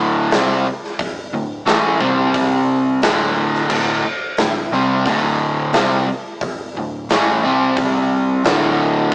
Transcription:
0.00 0.29 D1 loud
0.00 0.32 D2 medium
0.00 0.32 A2 loud
0.00 0.32 D3 loud
0.31 0.65 C2 medium
0.31 0.66 C3 medium
0.31 0.66 G3 loud
0.31 0.66 C4 loud
0.31 snare loud
0.31 open hi-hat medium
0.84 snare soft
0.99 muted picked electric bass stroke soft
0.99 muted overdriven electric guitar stroke medium
0.99 kick loud
0.99 open hi-hat medium
1.33 1.65 D1 medium
1.33 1.61 D2 medium
1.33 1.61 A2 medium
1.66 2.00 A1 loud
1.66 2.00 A2 medium
1.66 2.00 E3 medium
1.66 2.00 A3 loud
1.66 snare loud
1.66 open hi-hat soft
2.00 2.99 C2 medium
2.00 3.01 C3 loud
2.00 3.02 G3 medium
2.00 3.02 C4 loud
2.00 kick medium
2.34 kick loud
2.34 open hi-hat medium
3.02 3.67 D1 medium
3.02 3.68 D2 loud
3.02 3.69 A2 medium
3.02 3.70 D3 loud
3.02 snare loud
3.02 open hi-hat medium
3.54 snare soft
3.69 4.02 D1 medium
3.69 4.03 D2 medium
3.69 4.03 A2 loud
3.69 4.04 D3 loud
3.69 kick loud
3.69 crash medium
4.05 muted picked electric bass stroke soft
4.05 muted overdriven electric guitar stroke medium
4.37 4.70 D1 medium
4.37 4.66 D2 medium
4.37 4.66 A2 medium
4.37 snare loud
4.37 open hi-hat medium
4.72 5.04 C2 medium
4.72 5.05 C3 medium
4.72 5.05 G3 loud
4.72 5.06 C4 loud
4.72 snare soft
5.06 5.70 D1 medium
5.06 5.73 D2 loud
5.06 5.74 A2 medium
5.06 5.74 D3 medium
5.06 kick loud
5.06 open hi-hat medium
5.73 6.06 C2 medium
5.73 6.07 C3 loud
5.73 6.07 G3 loud
5.73 6.08 C4 loud
5.73 snare loud
5.73 open hi-hat medium
6.41 muted picked electric bass stroke soft
6.41 muted overdriven electric guitar stroke medium
6.41 kick loud
6.41 open hi-hat medium
6.75 7.07 D1 medium
6.75 7.04 D2 medium
6.75 7.04 A2 medium
7.09 7.41 A1 medium
7.09 7.43 A2 medium
7.09 7.43 E3 loud
7.09 7.44 A3 medium
7.09 snare loud
7.09 open hi-hat medium
7.43 8.41 C2 medium
7.43 8.44 C3 medium
7.43 8.44 G3 medium
7.43 8.45 C4 medium
7.77 kick loud
7.77 open hi-hat medium
8.44 9.09 D1 medium
8.44 9.11 D2 loud
8.44 9.12 A2 medium
8.44 9.12 D3 loud
8.44 snare loud
8.44 open hi-hat medium

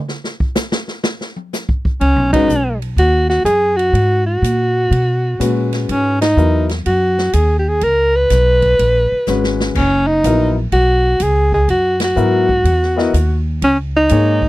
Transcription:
0.08 snare soft
0.24 snare soft
0.40 kick medium
0.55 snare loud
0.55 hi-hat pedal medium
0.72 snare loud
0.88 snare soft
1.04 snare loud
1.21 snare soft
1.36 high tom soft
1.53 snare soft
1.53 hi-hat pedal medium
1.69 kick medium
1.85 kick medium
2.01 2.16 C#2 medium
2.01 2.31 C#4 medium
2.01 ride medium
2.16 2.31 B1 soft
2.32 2.47 G#1 medium
2.32 2.48 G#3 medium
2.32 2.48 C#4 medium
2.32 2.78 D#4 medium
2.32 2.49 F#4 medium
2.32 2.49 B4 medium
2.32 kick medium
2.32 ride medium
2.48 2.96 B1 medium
2.48 hi-hat pedal medium
2.82 ride soft
2.97 3.44 D#2 medium
2.97 3.29 F#4 medium
2.97 ride medium
3.30 3.44 F#4 medium
3.30 snare soft
3.45 3.93 F#2 medium
3.45 3.78 G#4 medium
3.45 hi-hat pedal soft
3.45 ride medium
3.77 4.26 F#4 medium
3.77 ride soft
3.93 4.41 G#2 medium
3.93 ride medium
4.26 5.68 F#4 medium
4.42 4.90 A#2 medium
4.42 hi-hat pedal medium
4.42 ride medium
4.91 5.38 B2 medium
4.91 ride medium
5.40 5.87 A#2 medium
5.40 6.14 G#3 soft
5.40 6.14 C#4 soft
5.40 6.15 F#4 soft
5.40 6.15 B4 medium
5.40 hi-hat pedal soft
5.40 ride medium
5.73 snare soft
5.73 ride soft
5.89 6.36 G#2 medium
5.89 6.20 C#4 medium
5.89 ride medium
6.21 6.66 D#4 medium
6.21 snare medium
6.21 ride medium
6.36 6.84 E2 medium
6.36 6.66 F#3 medium
6.36 6.66 B3 soft
6.36 6.66 E4 soft
6.36 6.67 A#4 medium
6.36 hi-hat pedal soft
6.69 snare soft
6.69 ride soft
6.86 7.33 F#2 medium
6.86 7.35 F#4 medium
6.86 ride medium
7.18 snare soft
7.33 7.81 D#2 medium
7.33 7.58 G#4 medium
7.33 hi-hat pedal medium
7.33 ride medium
7.59 7.70 G4 medium
7.69 7.85 G#4 medium
7.81 8.29 C#2 medium
7.81 8.17 A#4 medium
7.81 ride medium
8.16 9.60 B4 medium
8.30 8.77 B1 medium
8.30 snare soft
8.30 hi-hat pedal medium
8.30 ride medium
8.62 kick soft
8.62 ride soft
8.79 9.09 A#1 medium
8.79 ride medium
9.12 muted upright bass stroke soft
9.27 9.74 G#1 medium
9.27 9.76 G#3 medium
9.27 9.76 C#4 medium
9.27 9.77 F#4 soft
9.27 9.77 B4 medium
9.27 snare soft
9.27 hi-hat pedal medium
9.44 snare soft
9.60 snare medium
9.75 10.22 F#1 medium
9.75 10.08 C#4 medium
9.75 kick medium
9.75 crash medium
10.07 10.56 D#4 medium
10.24 10.71 A#1 medium
10.24 10.54 F#3 medium
10.24 10.54 B3 medium
10.24 10.54 E4 medium
10.24 10.54 A#4 medium
10.24 hi-hat pedal medium
10.24 ride medium
10.72 11.19 B1 medium
10.72 11.24 F#4 medium
10.72 ride medium
11.20 11.67 C#2 medium
11.20 11.53 G#4 medium
11.20 hi-hat pedal soft
11.20 ride medium
11.52 11.69 G#4 medium
11.52 kick medium
11.68 12.15 F#2 medium
11.68 12.00 F#4 medium
11.68 ride medium
12.00 snare medium
12.00 ride medium
12.04 13.43 F#4 medium
12.16 12.64 G#2 medium
12.16 12.46 F#3 medium
12.16 12.46 B3 medium
12.16 12.46 E4 medium
12.16 12.46 A#4 medium
12.16 hi-hat pedal soft
12.49 kick soft
12.64 13.11 E2 medium
12.64 ride medium
12.82 snare soft
12.96 13.11 B3 medium
12.96 13.12 E4 medium
12.96 13.12 A#4 medium
12.96 13.12 D#5 medium
12.96 snare soft
13.14 13.60 D#2 medium
13.14 hi-hat pedal medium
13.14 ride medium
13.62 14.09 C#2 medium
13.62 13.78 C#4 medium
13.62 ride medium
13.96 14.49 D#4 loud
14.09 14.49 G#2 medium
14.09 14.39 A#3 medium
14.09 14.39 D#4 medium
14.09 14.39 G#4 soft
14.09 14.40 C#5 medium
14.09 hi-hat pedal soft
14.09 ride medium
14.42 kick medium

